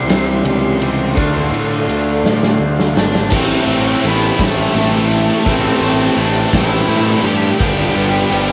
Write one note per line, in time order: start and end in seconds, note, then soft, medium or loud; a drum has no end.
0.00 0.78 C3 medium
0.00 1.13 C3 medium
0.00 1.14 E3 medium
0.00 0.79 G3 medium
0.00 1.14 G3 medium
0.00 0.79 C4 medium
0.00 1.17 C4 medium
0.00 1.15 E4 loud
0.00 1.15 G4 medium
0.00 1.13 C5 medium
0.00 1.14 E5 medium
0.00 1.50 C6 loud
0.00 3.27 C6 medium
0.09 0.43 C2 medium
0.09 snare loud
0.09 ride loud
0.45 1.17 C#2 medium
0.45 ride medium
0.79 1.14 C3 medium
0.79 1.15 G3 medium
0.79 1.16 C4 medium
0.79 ride medium
1.14 1.51 D2 medium
1.14 2.93 D3 medium
1.14 3.29 D3 medium
1.14 2.93 A3 loud
1.14 3.29 A3 medium
1.14 2.94 D4 loud
1.14 3.30 D4 medium
1.14 3.30 F4 medium
1.14 3.28 A4 medium
1.14 3.28 D5 medium
1.14 3.29 F5 medium
1.14 kick loud
1.14 ride medium
1.51 1.86 A2 loud
1.51 ride medium
1.88 2.22 D2 medium
1.88 ride medium
2.24 2.58 A2 medium
2.24 snare medium
2.43 snare medium
2.60 2.94 D2 medium
2.80 snare medium
2.95 3.30 G#1 medium
2.95 3.30 D3 medium
2.95 3.30 A3 medium
2.95 3.29 D4 medium
2.95 3.31 D4 medium
2.95 3.31 D5 medium
2.95 snare loud
3.15 snare medium
3.30 3.59 A1 medium
3.30 5.43 A2 loud
3.30 3.66 A2 loud
3.30 3.67 E3 loud
3.30 5.44 E3 loud
3.30 3.67 A3 loud
3.30 5.44 A3 loud
3.30 3.68 C4 loud
3.30 3.68 E4 loud
3.30 7.57 G4 medium
3.30 7.57 A4 medium
3.30 7.57 E5 medium
3.30 7.56 A5 medium
3.30 kick loud
3.30 crash loud
3.36 4.01 C4 medium
3.36 4.01 C5 medium
3.67 3.94 A1 medium
3.67 4.03 A2 medium
3.67 4.03 E3 medium
3.67 4.04 A3 medium
3.67 4.04 C4 loud
3.67 4.05 E4 loud
3.67 ride medium
4.03 4.30 A1 medium
4.03 4.38 A2 medium
4.03 4.38 E3 medium
4.03 4.39 A3 medium
4.03 4.39 C4 medium
4.03 4.39 E4 loud
4.03 ride medium
4.07 4.39 B3 medium
4.07 4.43 B4 medium
4.39 4.66 A1 medium
4.39 4.73 A2 medium
4.39 4.74 E3 medium
4.39 4.74 A3 loud
4.39 4.75 C4 medium
4.39 4.75 E4 loud
4.39 kick medium
4.39 snare loud
4.39 ride loud
4.43 4.75 A3 medium
4.43 4.75 A4 loud
4.75 5.29 A1 loud
4.75 5.08 A2 medium
4.75 5.09 E3 medium
4.75 5.10 A3 medium
4.75 5.44 A3 medium
4.75 5.10 C4 loud
4.75 5.10 E4 loud
4.75 ride medium
4.79 5.50 A4 loud
5.10 5.44 A2 medium
5.10 5.44 E3 medium
5.10 5.45 A3 medium
5.10 5.45 C4 loud
5.10 5.45 E4 loud
5.10 ride medium
5.45 5.73 A1 loud
5.45 7.58 A2 medium
5.45 5.80 A2 medium
5.45 5.80 E3 loud
5.45 7.58 E3 loud
5.45 5.81 A3 loud
5.45 7.59 A3 loud
5.45 5.80 C4 loud
5.45 5.80 C4 medium
5.45 5.81 E4 loud
5.45 5.84 C5 loud
5.45 kick loud
5.45 ride loud
5.81 6.09 A1 loud
5.81 6.14 A2 medium
5.81 6.15 E3 medium
5.81 6.15 A3 loud
5.81 6.16 C4 loud
5.81 6.16 E4 loud
5.81 ride medium
5.85 6.17 C4 medium
5.85 6.18 C5 medium
6.15 6.44 A1 loud
6.15 6.51 A2 medium
6.15 6.51 E3 medium
6.15 6.51 A3 loud
6.15 6.52 C4 medium
6.15 6.52 E4 medium
6.15 ride medium
6.21 6.53 D4 medium
6.21 6.56 D5 medium
6.52 6.80 A1 loud
6.52 6.87 A2 medium
6.52 6.87 E3 medium
6.52 6.88 A3 medium
6.52 6.88 C4 loud
6.52 6.89 E4 loud
6.52 kick medium
6.52 snare loud
6.52 ride loud
6.58 7.23 E4 medium
6.58 7.11 E5 loud
6.88 7.23 A2 medium
6.88 7.16 A2 loud
6.88 7.23 E3 medium
6.88 7.24 A3 medium
6.88 7.25 C4 medium
6.88 7.25 E4 medium
6.88 ride medium
7.11 7.26 D5 loud
7.24 7.51 G2 medium
7.24 7.58 A2 medium
7.24 7.58 E3 medium
7.24 7.58 A3 loud
7.24 7.59 C4 medium
7.24 7.59 E4 loud
7.24 7.58 G4 medium
7.24 7.63 G5 loud
7.24 ride medium
7.59 7.87 G1 loud
7.59 8.52 G2 medium
7.59 7.94 G2 loud
7.59 8.52 D3 loud
7.59 7.95 D3 loud
7.59 8.52 F3 loud
7.59 8.52 F3 medium
7.59 7.95 G3 loud
7.59 8.52 G3 loud
7.59 7.95 B3 loud
7.59 7.96 D4 loud
7.59 8.52 B4 medium
7.59 8.52 D5 medium
7.59 8.52 G5 medium
7.59 kick loud
7.59 ride loud
7.63 8.52 G4 loud
7.63 8.52 G5 loud
7.95 8.23 G1 loud
7.95 8.30 G2 medium
7.95 8.30 D3 medium
7.95 8.31 G3 loud
7.95 8.31 B3 loud
7.95 8.32 D4 medium
7.95 ride medium
8.31 8.52 G1 medium
8.31 8.52 G2 medium
8.31 8.52 D3 medium
8.31 8.52 G3 loud
8.31 8.52 B3 medium
8.31 8.52 D4 loud
8.31 ride medium